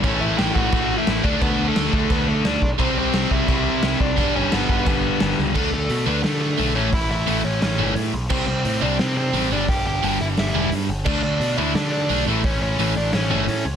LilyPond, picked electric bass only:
\new Staff \with { instrumentName = "Picked electric bass" } { \clef bass \time 4/4 \key d \major \tempo 4 = 174 a,,8 a,,8 a,,8 a,,8 a,,4 a,,8 d,8 | d,8 d,8 d,8 d,8 d,4 d,8 b,,8 | c,8 c,8 c,8 c,8 c,4 c,8 c,8 | g,,8 g,,8 g,,8 g,,8 g,,4 g,,8 cis,8 |
d,8 d,8 b,8 d,8 d4 b,,8 a,,8 | a,,8 a,,8 a,,8 a,,8 a,,8 g,,8 a,8 b,,8 | c,8 c,8 a,8 c,8 c4 a,,8 g,,8 | g,,8 g,,8 g,,8 g,,8 g,,8 e,,8 g,8 g,,8 |
d,8 d,8 b,8 d,8 d4 b,,8 a,,8 | a,,8 a,,8 a,,8 a,,8 a,,8 g,,8 a,8 cis,8 | }